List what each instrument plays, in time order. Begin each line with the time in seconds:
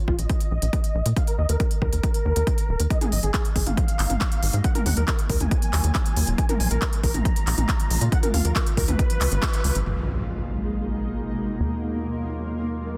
0.08 analog synth bass A#1, supersaw synth F4, kick
0.19 analog synth bass A#1, supersaw synth D#5, closed hi-hat
0.30 kick, closed hi-hat
0.40 closed hi-hat
0.51 analog synth bass A#1
0.62 analog synth bass A#1, closed hi-hat
0.73 kick, closed hi-hat
0.84 closed hi-hat
0.95 analog synth bass A#1
1.06 analog synth bass A#2, closed hi-hat
1.17 supersaw synth F5, kick, closed hi-hat
1.27 supersaw synth A#4, closed hi-hat
1.38 analog synth bass D#2, supersaw synth D#5
1.49 analog synth bass D#2, supersaw synth A#4, closed hi-hat
1.60 supersaw synth A#4, kick, closed hi-hat
1.71 closed hi-hat
1.82 analog synth bass D#2, supersaw synth A#4, kick
1.93 analog synth bass D#2, supersaw synth A#4, closed hi-hat
2.03 kick, closed hi-hat
2.14 closed hi-hat
2.25 analog synth bass D#2
2.36 analog synth bass D#2, closed hi-hat
2.47 kick, closed hi-hat
2.58 closed hi-hat
2.69 analog synth bass D#1
2.80 analog synth bass D#2, closed hi-hat
2.90 ambient pad B2 G#3 A#3 D#4, supersaw synth D#5, kick, closed hi-hat
3.01 supersaw synth G#4, closed hi-hat, mid tom
3.12 analog synth bass G#1, supersaw synth D#5, open hi-hat
3.23 analog synth bass G#1, supersaw synth G#4, closed hi-hat
3.34 supersaw synth G#4, kick, clap, closed hi-hat
3.45 closed hi-hat
3.56 analog synth bass G#1, supersaw synth G#4, kick, open hi-hat
3.67 analog synth bass G#1, supersaw synth F5, closed hi-hat, mid tom
3.77 kick, closed hi-hat
3.88 closed hi-hat
3.99 analog synth bass G#1, clap, open hi-hat
4.10 analog synth bass G#1, closed hi-hat, mid tom
4.21 kick, clap, closed hi-hat
4.32 closed hi-hat
4.43 analog synth bass G#1, open hi-hat
4.53 analog synth bass G#2, closed hi-hat
4.64 ambient pad D#3 F#3 F4, supersaw synth F#5, kick, closed hi-hat
4.75 supersaw synth A#4, closed hi-hat, mid tom
4.86 analog synth bass D#2, supersaw synth F#5, open hi-hat, mid tom
4.97 analog synth bass D#2, supersaw synth A#4, closed hi-hat
5.08 supersaw synth A#4, kick, clap, closed hi-hat
5.19 closed hi-hat
5.30 analog synth bass D#2, supersaw synth A#4, kick, open hi-hat
5.40 analog synth bass D#2, supersaw synth G#5, closed hi-hat, mid tom
5.51 kick, closed hi-hat
5.62 closed hi-hat
5.73 analog synth bass D#2, clap, open hi-hat
5.84 analog synth bass D#2, closed hi-hat
5.95 kick, clap, closed hi-hat
6.06 closed hi-hat
6.16 analog synth bass D#2, open hi-hat
6.27 analog synth bass D#1, closed hi-hat
6.38 ambient pad C#3 G#3 F4, supersaw synth G#5, kick, closed hi-hat
6.49 supersaw synth A#4, closed hi-hat, mid tom
6.60 analog synth bass A#1, supersaw synth G#5, open hi-hat
6.71 analog synth bass A#1, supersaw synth A#4, closed hi-hat
6.82 supersaw synth A#4, kick, clap, closed hi-hat
6.93 closed hi-hat
7.03 analog synth bass A#1, supersaw synth A#4, kick, open hi-hat
7.14 analog synth bass A#1, supersaw synth A#5, closed hi-hat, mid tom
7.25 kick, closed hi-hat
7.36 closed hi-hat
7.47 analog synth bass A#1, clap, open hi-hat
7.58 analog synth bass A#1, closed hi-hat, mid tom
7.69 kick, clap, closed hi-hat
7.80 closed hi-hat
7.90 analog synth bass A#1, open hi-hat
8.01 analog synth bass A#2, closed hi-hat
8.12 supersaw synth F#5, kick, closed hi-hat
8.23 supersaw synth A#4, closed hi-hat, mid tom
8.34 analog synth bass D#2, supersaw synth F5, open hi-hat, mid tom
8.45 analog synth bass D#2, supersaw synth A#4, closed hi-hat
8.56 supersaw synth A#4, kick, clap, closed hi-hat
8.67 closed hi-hat
8.77 analog synth bass D#2, supersaw synth A#4, kick, open hi-hat
8.88 analog synth bass D#2, supersaw synth B4, closed hi-hat, mid tom
8.99 kick, closed hi-hat
9.10 closed hi-hat
9.21 analog synth bass C#2, clap, open hi-hat
9.32 analog synth bass G#1, closed hi-hat
9.43 kick, clap, closed hi-hat
9.53 closed hi-hat
9.64 analog synth bass C#2, open hi-hat
9.75 analog synth bass G#1, closed hi-hat
9.86 analog synth bass G#1, ambient pad B2 G#3 A#3 D#4, impact
11.60 analog synth bass D#2, ambient pad D#3 F#3 F4